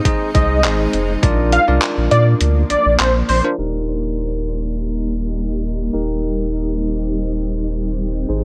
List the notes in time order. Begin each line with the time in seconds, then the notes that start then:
Already playing: G#3 C4 D#4
0.05 D#4 G#4 C5 D#5, kick, closed hi-hat
0.34 C2 D#4 G#4 C5 D#5, kick, closed hi-hat
0.64 G#1 D#4 G#4 C5 D#5, clap, closed hi-hat
0.93 F1, closed hi-hat
1.23 A#1 F3 A#3 D4 F4 A#4 D5, kick, closed hi-hat
1.52 F5, closed hi-hat
1.68 C2 D4 F4 A#4 D5
1.82 clap, closed hi-hat
1.97 A#1
2.11 A#2 D5, closed hi-hat
2.41 D2, closed hi-hat
2.70 A#1 D5, closed hi-hat
2.86 A#1
2.99 A#1 C5, clap, closed hi-hat
3.29 A#1 C5, open hi-hat
3.44 D4 F4 A#4 C5
3.58 D#1 G3 A#3 D#4 G4 A#4
5.93 D#1 C4 D#4 G4 A#4
8.28 G#1 G#3 D#4 G#4 C5